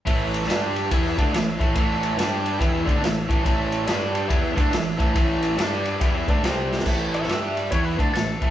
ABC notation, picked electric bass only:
X:1
M:4/4
L:1/8
Q:"Swing" 1/4=141
K:Amix
V:1 name="Picked electric bass" clef=bass
A,,,2 G,,2 E,, D,, A,,, A,,, | A,,,2 G,,2 E,, D,, A,,, A,,, | A,,,2 G,,2 E,, D,, A,,, A,,, | A,,,2 G,,2 E,, D,, =C,,2 |
A,,,2 G,,2 E,, D,, A,,, A,,, |]